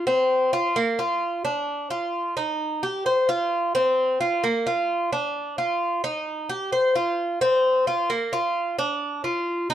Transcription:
cuban tres
0.07 C4
0.53 F4
0.76 A#3
0.99 F4
1.45 D4
1.90 F4
2.37 D#4
2.83 G4
3.06 C5
3.29 F4
3.75 C4
4.21 F4
4.44 A#3
4.67 F4
5.13 D4
5.58 F4
6.04 D#4
6.49 G4
6.72 C5
6.95 F4
7.41 C4
7.87 F4
8.10 A#3
8.33 F4
8.79 D4
9.24 F4
9.70 D#4

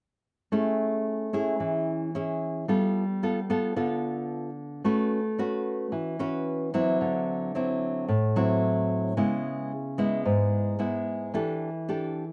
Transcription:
nylon-string guitar
0.52 A3 C#4 E4 G#4
1.33 C#4 E4 G#4
1.60 E3
2.15 C#4 E4 G#4
2.68 G3 B3 F4 A4
3.23 B3 F4 A4
3.50 B3 F4 A4
3.76 D3 B3 F4 A4
4.84 A3 C#4 F#4 B4
5.38 C#4 F#4 B4
5.92 E3
6.19 C#4 F#4 B4
6.74 F#3 C4 E4
7.01 D3
7.55 F#3 C4 E4
8.08 A2
8.36 F#3 C4 E4
9.17 C#3 G#3 B3 E4
9.98 G#3 B3 E4
10.25 G#2
10.79 G#3 B3 E4
11.34 E3 D4 G4 A4
11.89 D4 G4 A4

